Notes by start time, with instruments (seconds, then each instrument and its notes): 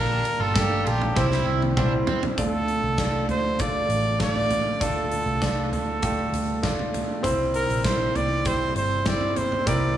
Already playing: fingered electric bass A#1, grand piano A#2 G3 A#3 D4 A5, analog synth pad A#3 G4 A5, overdriven electric guitar D4, trumpet A#4
0.25 ride
0.39 fingered electric bass G1, overdriven electric guitar F4, trumpet A4
0.55 grand piano G3 A3 D4 A4, overdriven electric guitar G4, kick, snare, ride
0.62 grand piano A#3
0.86 fingered electric bass A#1, overdriven electric guitar F4, trumpet G4, ride
1.02 floor tom
1.15 fingered electric bass C2, analog synth pad C3 G3 E4, grand piano C3 G3 C4 E4 C5, overdriven electric guitar E4, kick, snare
1.32 snare
1.46 fingered electric bass C2, overdriven electric guitar E4
1.62 high tom
1.77 grand piano G3 C4 E4 C5, overdriven electric guitar D4, kick, mid tom
2.07 overdriven electric guitar C4, floor tom
2.23 floor tom
2.37 fingered electric bass D2, grand piano D3 A3 D4 F4 D5, analog synth pad D3 A3 F4, trumpet A4, kick, closed hi-hat
2.68 closed hi-hat
2.82 fingered electric bass C2
2.98 grand piano A3 D4 F4 D5, kick, snare, closed hi-hat
3.28 fingered electric bass D2, trumpet C5, closed hi-hat, floor tom
3.59 grand piano A3 D4 F4 D5, trumpet D5, kick, closed hi-hat
3.89 fingered electric bass A1, closed hi-hat
4.19 grand piano A3 D4 F4 D5, trumpet D5, kick, snare, closed hi-hat
4.36 floor tom
4.50 closed hi-hat, floor tom
4.80 fingered electric bass D2, grand piano D3 A3 D4 F4 D5, analog synth pad G3, trumpet A4, kick, closed hi-hat
5.11 closed hi-hat
5.26 fingered electric bass C2
5.41 grand piano A3 D4 F4 D5, kick, snare, closed hi-hat
5.72 fingered electric bass D2, trumpet A4, closed hi-hat, floor tom
6.02 grand piano A3 D4 F4 G4, kick, closed hi-hat
6.33 fingered electric bass D2, closed hi-hat
6.63 grand piano A3 D4 F4 D5, kick, snare, closed hi-hat
6.79 floor tom
6.94 closed hi-hat, floor tom
7.23 fingered electric bass C2, grand piano C3 G3 C4 E4 C5, analog synth pad C3 G3 E4, kick, closed hi-hat
7.54 trumpet A#4, closed hi-hat
7.69 fingered electric bass A#1, closed hi-hat
7.84 grand piano G3 C4 E4 A#4, trumpet C5, kick, snare, closed hi-hat
8.15 fingered electric bass C2, trumpet D5, closed hi-hat, floor tom
8.45 grand piano G3 C4 E4 G4, trumpet C5, kick, closed hi-hat
8.75 fingered electric bass G1, trumpet C5, closed hi-hat
9.06 grand piano G3 C4 E4 C5, trumpet D5, kick, snare, closed hi-hat
9.21 floor tom
9.36 trumpet C5, closed hi-hat, floor tom
9.52 floor tom
9.66 fingered electric bass C2, grand piano C3 G3 C4 E4 A#4, trumpet D5, kick, closed hi-hat